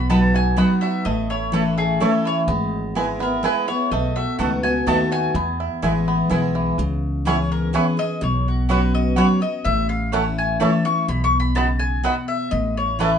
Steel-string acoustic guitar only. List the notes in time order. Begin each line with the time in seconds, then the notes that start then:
Already playing: B2
0.10 F#3 B3 D#4 F#4
0.57 F#3 B3 D#4 F#4
1.05 A2
1.52 E3 A3 C#4 E4
2.00 E3 A3 C#4 E4
2.48 G#3
2.95 G#3 B3 E4
3.19 B3 E4
3.43 G#3 B3 E4
3.68 B3 E4
3.92 B2
4.39 D#3 A3 B3 F#4
4.63 B3 F#4
4.87 D#3 A3 B3 F#4
5.35 E2
5.82 E3 G#3 B3 E4
6.29 E3 G#3 B3 E4
6.79 C#3
7.25 E3 B3 C#4 G#4
7.73 E3 B3 C#4 G#4
7.97 C#4 G#4
8.21 B2
8.69 F#3 B3 C#4 F#4
9.16 F#3 B3 C#4 F#4
9.41 C#4 F#4
9.65 A2
10.13 E3 A3 C#4 E4
10.60 E3 A3 C#4 E4
10.85 C#4 E4
11.08 B2
11.55 C#3
12.03 B2
12.51 A2
12.99 E3 A3 C#4 E4